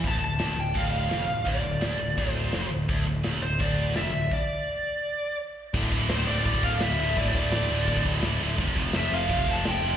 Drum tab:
CC |----------------|----------------|----------------|x---------------|
RD |b---b---b---b---|b---b---b---b---|b---b---b---b---|----------------|
SD |----o-------o---|----o-------o---|----o-------o---|----------------|
BD |o-------o-------|o-------o-------|o-------o-------|o---------------|

CC |x-x-x-x-x-x-x-x-|x-x-x-x-x-x-x-x-|x-x-x-x-x-x-x-x-|
RD |----------------|----------------|----------------|
SD |----o-------o---|----o-------o---|----o-------o---|
BD |ooo-----ooo-----|ooo-----ooo-----|ooo-----ooo-----|